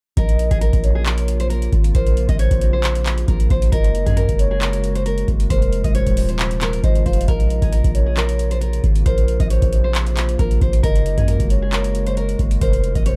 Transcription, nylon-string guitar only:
0.17 0.49 A#4 loud
0.51 0.61 G#4 medium
0.61 0.93 A#4 medium
0.95 1.05 G#4 medium
1.06 1.38 A#4 medium
1.40 1.49 C5 medium
1.50 1.71 A#4 medium
1.95 2.27 C5 loud
2.29 2.39 D#5 loud
2.39 2.71 C#5 medium
2.73 3.25 C5 medium
3.28 3.49 A#4 medium
3.51 3.71 C5 medium
3.72 4.04 A#4 loud
4.06 4.16 G#4 medium
4.17 4.49 A#4 medium
4.51 4.61 G#4 medium
4.61 4.93 A#4 medium
4.95 5.05 C5 medium
5.06 5.27 A#4 medium
5.50 5.82 C5 loud
5.84 5.94 D#5 medium
5.95 6.27 C#5 medium
6.29 6.39 C5 medium
6.62 6.83 A#4 medium
6.84 7.05 C5 medium
7.06 7.27 C5 medium
7.28 7.60 A#4 loud
7.62 7.72 G#4 medium
7.72 8.04 A#4 medium
8.06 8.16 G#4 medium
8.17 8.49 A#4 medium
8.51 8.61 C5 medium
8.61 8.82 A#4 medium
9.06 9.38 C5 loud
9.40 9.50 D#5 loud
9.50 9.82 C#5 medium
9.84 10.36 C5 medium
10.39 10.60 A#4 medium
10.62 10.82 C5 medium
10.83 11.15 A#4 loud
11.17 11.27 G#4 medium
11.28 11.60 A#4 medium
11.62 11.72 G#4 medium
11.72 12.04 A#4 medium
12.07 12.16 C5 medium
12.17 12.38 A#4 medium
12.61 12.93 C5 loud
12.95 13.05 D#5 medium
13.06 13.16 C#5 medium

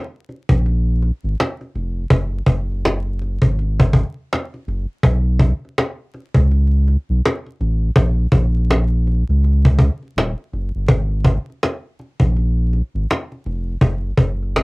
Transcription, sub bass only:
0.49 1.11 A#1 loud
1.23 1.35 G#1 medium
1.75 2.05 F1 medium
2.11 2.41 F#1 loud
2.47 3.38 F#1 loud
3.42 4.04 G#1 medium
4.67 4.85 F#1 medium
5.03 5.53 B1 loud
6.35 6.96 C#2 medium
7.09 7.21 B1 medium
7.60 7.90 A1 medium
7.96 8.27 A#1 loud
8.32 9.24 A#1 loud
9.28 9.90 C#2 medium
10.16 10.34 D#1 loud
10.52 10.71 F#1 loud
10.75 10.87 G1 medium
10.89 11.38 G#1 loud
12.20 12.81 A#1 medium
12.94 13.06 G#1 medium
13.45 13.76 F1 medium
13.81 14.12 F#1 loud
14.17 14.63 F#1 loud

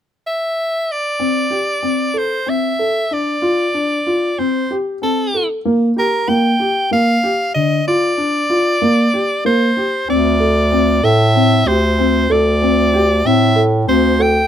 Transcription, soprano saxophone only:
0.27 0.93 E5 medium
0.92 2.20 D5 medium
2.18 2.51 C5 medium
2.49 3.15 E5 medium
3.13 4.40 D5 medium
4.39 4.75 C5 medium
5.03 5.47 A4 soft
5.99 6.30 A#4 medium
6.29 6.92 G5 medium
6.93 7.52 F5 medium
7.54 7.84 D#5 medium
7.88 9.42 D5 medium
9.46 10.05 C5 medium
10.10 11.06 D5 medium
11.05 11.69 E5 medium
11.68 12.33 C5 medium
12.32 13.28 D5 medium
13.26 13.62 E5 medium
13.89 14.23 C5 medium
14.22 14.47 G5 medium

